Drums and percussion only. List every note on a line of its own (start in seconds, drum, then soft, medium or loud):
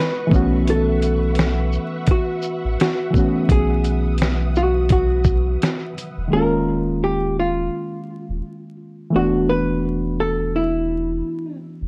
0.31 kick loud
0.31 shaker soft
0.67 closed hi-hat medium
1.02 closed hi-hat soft
1.02 shaker soft
1.35 snare loud
1.35 closed hi-hat medium
1.73 shaker soft
2.07 kick loud
2.07 closed hi-hat medium
2.42 shaker medium
2.80 snare loud
2.80 closed hi-hat medium
3.14 kick medium
3.14 shaker soft
3.49 kick loud
3.49 closed hi-hat medium
3.84 closed hi-hat soft
3.84 shaker soft
4.18 snare loud
4.18 closed hi-hat medium
4.56 shaker soft
4.89 kick loud
4.89 closed hi-hat medium
5.24 kick medium
5.24 shaker medium
5.62 snare loud
5.62 closed hi-hat medium
5.98 closed hi-hat soft
5.98 shaker soft